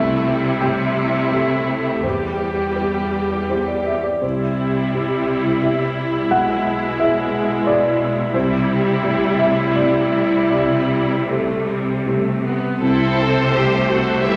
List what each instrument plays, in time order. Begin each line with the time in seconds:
Already playing: grand piano C2 E5, cello section C3, viola section A3 E4
0.28 viola section G3
0.61 viola section G3, grand piano A3 E4 G4 G5
1.30 grand piano A3 E4 G4 E5, viola section A3
1.67 viola section A3
2.02 grand piano E2 C5, cello section E2, viola section G3 G4
2.76 grand piano B3 E4 G4 B4
3.49 grand piano B3 E4 G4 C5
3.68 grand piano D5
3.85 grand piano E5
4.04 grand piano D5
4.21 grand piano C2 C5, cello section C3, viola section G3 E4
4.94 grand piano C4 E4 G4
5.61 grand piano B3 E4 G4 E5
6.30 grand piano B1 F#5, cello section B2, viola section G#3
6.99 grand piano B3 E4 G#4 E5
7.66 grand piano B3 E4 G#4 D5
8.33 grand piano C2 C5, cello section C3, viola section G3 E4
9.03 grand piano A3 E4 G4
9.39 grand piano E5
9.74 grand piano A3 E4 G4 D5
10.50 grand piano C2 D5
11.29 grand piano G3 E4 G4 C5, viola section A3
11.68 viola section G3
12.05 grand piano G3 E4 G4, viola section A3
12.43 viola section B3
12.80 double bass section C2, grand piano C2, cello section C3, viola section C4 E4, violin section A4 C5
13.18 viola section A4
13.52 grand piano G3 E4 C5, viola section A3 G4, violin section G4
13.87 viola section F#4, violin section A4
14.22 cello section E3, grand piano G3 E4 B4, viola section G3 E4, violin section G4 E5